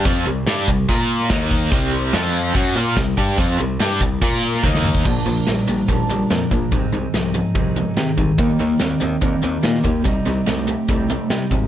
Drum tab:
CC |----------------|----------------|----------------|x---------------|
HH |x---x---x---x---|x---x---x---x---|x---x---x-------|----x---x---x---|
SD |----o------oo---|----o-------o---|----o------o-o--|----o-------o---|
T1 |----------------|----------------|------------o---|----------------|
T2 |----------------|----------------|--------------o-|----------------|
BD |o-----o-o---o-o-|o-------o---o-o-|o-----o-o---o--o|o-------o-----o-|

CC |----------------|----------------|----------------|
HH |x---x---x---x---|x---x---x---x---|x---x---x---x---|
SD |----o-------o---|--o-o-------oo--|--o-o-------o---|
T1 |----------------|----------------|----------------|
T2 |----------------|----------------|----------------|
BD |o-------o-----o-|o-------o-----o-|o-------o-----o-|